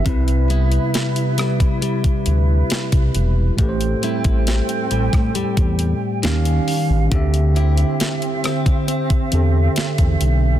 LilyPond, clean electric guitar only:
\new Staff \with { instrumentName = "Clean electric guitar" } { \clef bass \time 4/4 \key c \lydian \tempo 4 = 68 c8 <g b e'>4 g8 g2 | a,8 <g c' e'>4 g8 g4 dis4 | d8 <c' e' g'>4 c'8 c'2 | }